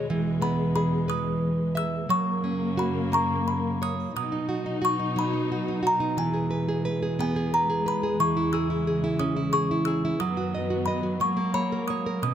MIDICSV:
0, 0, Header, 1, 4, 480
1, 0, Start_track
1, 0, Key_signature, 5, "major"
1, 0, Tempo, 674916
1, 59, Time_signature, 6, 3, 24, 8
1, 8776, End_track
2, 0, Start_track
2, 0, Title_t, "Music box"
2, 0, Program_c, 0, 10
2, 301, Note_on_c, 0, 83, 77
2, 529, Note_off_c, 0, 83, 0
2, 537, Note_on_c, 0, 83, 78
2, 778, Note_off_c, 0, 83, 0
2, 779, Note_on_c, 0, 87, 88
2, 1260, Note_on_c, 0, 88, 100
2, 1265, Note_off_c, 0, 87, 0
2, 1476, Note_off_c, 0, 88, 0
2, 1496, Note_on_c, 0, 85, 99
2, 1985, Note_on_c, 0, 83, 69
2, 1989, Note_off_c, 0, 85, 0
2, 2227, Note_on_c, 0, 82, 64
2, 2228, Note_off_c, 0, 83, 0
2, 2235, Note_on_c, 0, 85, 79
2, 2452, Note_off_c, 0, 85, 0
2, 2472, Note_on_c, 0, 83, 83
2, 2692, Note_off_c, 0, 83, 0
2, 2721, Note_on_c, 0, 87, 77
2, 2741, Note_off_c, 0, 82, 0
2, 2954, Note_off_c, 0, 87, 0
2, 2962, Note_on_c, 0, 87, 93
2, 3447, Note_on_c, 0, 85, 77
2, 3452, Note_off_c, 0, 87, 0
2, 3687, Note_off_c, 0, 85, 0
2, 3688, Note_on_c, 0, 83, 79
2, 4173, Note_on_c, 0, 82, 74
2, 4177, Note_off_c, 0, 83, 0
2, 4395, Note_on_c, 0, 80, 90
2, 4411, Note_off_c, 0, 82, 0
2, 5116, Note_off_c, 0, 80, 0
2, 5124, Note_on_c, 0, 80, 74
2, 5361, Note_on_c, 0, 82, 78
2, 5362, Note_off_c, 0, 80, 0
2, 5598, Note_off_c, 0, 82, 0
2, 5604, Note_on_c, 0, 83, 84
2, 5814, Note_off_c, 0, 83, 0
2, 5833, Note_on_c, 0, 85, 102
2, 6046, Note_off_c, 0, 85, 0
2, 6065, Note_on_c, 0, 88, 89
2, 6539, Note_on_c, 0, 87, 82
2, 6547, Note_off_c, 0, 88, 0
2, 6776, Note_on_c, 0, 85, 85
2, 6778, Note_off_c, 0, 87, 0
2, 6992, Note_off_c, 0, 85, 0
2, 7006, Note_on_c, 0, 88, 87
2, 7250, Note_off_c, 0, 88, 0
2, 7254, Note_on_c, 0, 87, 98
2, 7721, Note_on_c, 0, 83, 80
2, 7743, Note_off_c, 0, 87, 0
2, 7948, Note_off_c, 0, 83, 0
2, 7972, Note_on_c, 0, 85, 70
2, 8208, Note_on_c, 0, 83, 86
2, 8220, Note_off_c, 0, 85, 0
2, 8446, Note_on_c, 0, 87, 77
2, 8460, Note_off_c, 0, 83, 0
2, 8557, Note_off_c, 0, 87, 0
2, 8698, Note_on_c, 0, 87, 96
2, 8776, Note_off_c, 0, 87, 0
2, 8776, End_track
3, 0, Start_track
3, 0, Title_t, "Nylon-string guitar"
3, 0, Program_c, 1, 24
3, 71, Note_on_c, 1, 52, 68
3, 296, Note_on_c, 1, 59, 52
3, 538, Note_on_c, 1, 68, 59
3, 766, Note_off_c, 1, 59, 0
3, 769, Note_on_c, 1, 71, 56
3, 1245, Note_on_c, 1, 76, 55
3, 1461, Note_off_c, 1, 68, 0
3, 1463, Note_off_c, 1, 52, 0
3, 1464, Note_off_c, 1, 71, 0
3, 1478, Note_off_c, 1, 76, 0
3, 1489, Note_on_c, 1, 54, 63
3, 1734, Note_on_c, 1, 61, 49
3, 1973, Note_on_c, 1, 66, 53
3, 2218, Note_on_c, 1, 58, 56
3, 2677, Note_off_c, 1, 61, 0
3, 2715, Note_on_c, 1, 73, 46
3, 2917, Note_off_c, 1, 54, 0
3, 2917, Note_off_c, 1, 66, 0
3, 2925, Note_off_c, 1, 58, 0
3, 2944, Note_off_c, 1, 73, 0
3, 2958, Note_on_c, 1, 47, 57
3, 3072, Note_on_c, 1, 63, 41
3, 3191, Note_on_c, 1, 66, 48
3, 3306, Note_off_c, 1, 63, 0
3, 3314, Note_on_c, 1, 63, 49
3, 3417, Note_off_c, 1, 66, 0
3, 3425, Note_on_c, 1, 66, 54
3, 3543, Note_off_c, 1, 63, 0
3, 3552, Note_on_c, 1, 63, 52
3, 3670, Note_on_c, 1, 54, 65
3, 3786, Note_off_c, 1, 63, 0
3, 3794, Note_on_c, 1, 63, 45
3, 3915, Note_off_c, 1, 66, 0
3, 3924, Note_on_c, 1, 66, 48
3, 4033, Note_off_c, 1, 63, 0
3, 4042, Note_on_c, 1, 63, 48
3, 4135, Note_off_c, 1, 66, 0
3, 4144, Note_on_c, 1, 66, 52
3, 4260, Note_off_c, 1, 63, 0
3, 4269, Note_on_c, 1, 63, 53
3, 4372, Note_off_c, 1, 54, 0
3, 4373, Note_off_c, 1, 47, 0
3, 4382, Note_off_c, 1, 66, 0
3, 4388, Note_off_c, 1, 63, 0
3, 4390, Note_on_c, 1, 52, 60
3, 4507, Note_on_c, 1, 68, 43
3, 4627, Note_on_c, 1, 71, 45
3, 4746, Note_off_c, 1, 68, 0
3, 4754, Note_on_c, 1, 68, 47
3, 4864, Note_off_c, 1, 71, 0
3, 4872, Note_on_c, 1, 71, 55
3, 4988, Note_off_c, 1, 68, 0
3, 4996, Note_on_c, 1, 68, 55
3, 5116, Note_on_c, 1, 59, 64
3, 5227, Note_off_c, 1, 68, 0
3, 5236, Note_on_c, 1, 68, 46
3, 5352, Note_off_c, 1, 71, 0
3, 5361, Note_on_c, 1, 71, 47
3, 5465, Note_off_c, 1, 68, 0
3, 5474, Note_on_c, 1, 68, 53
3, 5583, Note_off_c, 1, 71, 0
3, 5592, Note_on_c, 1, 71, 49
3, 5705, Note_off_c, 1, 68, 0
3, 5713, Note_on_c, 1, 68, 45
3, 5790, Note_off_c, 1, 52, 0
3, 5801, Note_off_c, 1, 59, 0
3, 5817, Note_off_c, 1, 71, 0
3, 5822, Note_off_c, 1, 68, 0
3, 5831, Note_on_c, 1, 52, 60
3, 5950, Note_on_c, 1, 64, 45
3, 6072, Note_on_c, 1, 68, 47
3, 6179, Note_off_c, 1, 64, 0
3, 6188, Note_on_c, 1, 64, 45
3, 6302, Note_off_c, 1, 68, 0
3, 6311, Note_on_c, 1, 68, 56
3, 6419, Note_off_c, 1, 64, 0
3, 6428, Note_on_c, 1, 64, 50
3, 6543, Note_on_c, 1, 61, 61
3, 6652, Note_off_c, 1, 64, 0
3, 6660, Note_on_c, 1, 64, 49
3, 6772, Note_off_c, 1, 68, 0
3, 6780, Note_on_c, 1, 68, 51
3, 6898, Note_off_c, 1, 64, 0
3, 6906, Note_on_c, 1, 64, 49
3, 7015, Note_off_c, 1, 68, 0
3, 7023, Note_on_c, 1, 68, 45
3, 7138, Note_off_c, 1, 64, 0
3, 7146, Note_on_c, 1, 64, 48
3, 7219, Note_off_c, 1, 52, 0
3, 7228, Note_off_c, 1, 61, 0
3, 7245, Note_off_c, 1, 68, 0
3, 7250, Note_off_c, 1, 64, 0
3, 7257, Note_on_c, 1, 54, 60
3, 7376, Note_on_c, 1, 66, 43
3, 7500, Note_on_c, 1, 75, 44
3, 7604, Note_off_c, 1, 66, 0
3, 7612, Note_on_c, 1, 66, 46
3, 7726, Note_off_c, 1, 75, 0
3, 7735, Note_on_c, 1, 75, 52
3, 7838, Note_off_c, 1, 66, 0
3, 7846, Note_on_c, 1, 66, 46
3, 7951, Note_off_c, 1, 54, 0
3, 7963, Note_off_c, 1, 66, 0
3, 7964, Note_off_c, 1, 75, 0
3, 7966, Note_on_c, 1, 54, 62
3, 8084, Note_on_c, 1, 58, 45
3, 8209, Note_on_c, 1, 73, 46
3, 8337, Note_on_c, 1, 70, 46
3, 8456, Note_off_c, 1, 73, 0
3, 8464, Note_on_c, 1, 73, 47
3, 8571, Note_off_c, 1, 70, 0
3, 8580, Note_on_c, 1, 70, 49
3, 8675, Note_off_c, 1, 54, 0
3, 8677, Note_off_c, 1, 58, 0
3, 8694, Note_on_c, 1, 47, 59
3, 8695, Note_off_c, 1, 73, 0
3, 8696, Note_off_c, 1, 70, 0
3, 8776, Note_off_c, 1, 47, 0
3, 8776, End_track
4, 0, Start_track
4, 0, Title_t, "String section"
4, 0, Program_c, 2, 48
4, 0, Note_on_c, 2, 47, 64
4, 0, Note_on_c, 2, 56, 77
4, 65, Note_on_c, 2, 40, 67
4, 1459, Note_off_c, 2, 47, 0
4, 1460, Note_off_c, 2, 56, 0
4, 1474, Note_off_c, 2, 40, 0
4, 1489, Note_on_c, 2, 49, 62
4, 1492, Note_on_c, 2, 42, 63
4, 1492, Note_on_c, 2, 58, 77
4, 2931, Note_off_c, 2, 49, 0
4, 2933, Note_off_c, 2, 42, 0
4, 2933, Note_off_c, 2, 58, 0
4, 2952, Note_on_c, 2, 54, 55
4, 2953, Note_on_c, 2, 47, 66
4, 2957, Note_on_c, 2, 63, 71
4, 4384, Note_off_c, 2, 54, 0
4, 4387, Note_off_c, 2, 63, 0
4, 4399, Note_on_c, 2, 56, 72
4, 4400, Note_on_c, 2, 40, 57
4, 5797, Note_off_c, 2, 47, 0
4, 5824, Note_on_c, 2, 49, 54
4, 7215, Note_off_c, 2, 56, 0
4, 7216, Note_off_c, 2, 40, 0
4, 7229, Note_off_c, 2, 49, 0
4, 7245, Note_on_c, 2, 51, 53
4, 7246, Note_on_c, 2, 59, 67
4, 7248, Note_on_c, 2, 42, 60
4, 7250, Note_on_c, 2, 54, 60
4, 7960, Note_off_c, 2, 51, 0
4, 7960, Note_off_c, 2, 59, 0
4, 7961, Note_off_c, 2, 42, 0
4, 7968, Note_on_c, 2, 58, 67
4, 7969, Note_on_c, 2, 56, 55
4, 8687, Note_off_c, 2, 54, 0
4, 8691, Note_off_c, 2, 56, 0
4, 8691, Note_off_c, 2, 58, 0
4, 8697, Note_on_c, 2, 59, 55
4, 8697, Note_on_c, 2, 61, 67
4, 8700, Note_on_c, 2, 51, 55
4, 8776, Note_off_c, 2, 51, 0
4, 8776, Note_off_c, 2, 59, 0
4, 8776, Note_off_c, 2, 61, 0
4, 8776, End_track
0, 0, End_of_file